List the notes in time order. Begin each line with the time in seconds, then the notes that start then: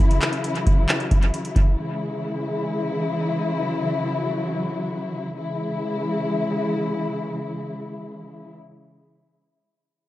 Already playing: C#3 E3 E4
0.00 F#3
0.11 closed hi-hat
0.21 clap, closed hi-hat
0.33 closed hi-hat
0.44 closed hi-hat
0.56 closed hi-hat
0.67 kick, closed hi-hat
0.89 clap, closed hi-hat
1.00 closed hi-hat
1.11 kick, closed hi-hat
1.23 closed hi-hat
1.34 closed hi-hat
1.45 closed hi-hat
1.56 kick, closed hi-hat
1.79 C#3 E3 G#3 E4
3.58 F#3
5.37 C#3 E3 G#3 E4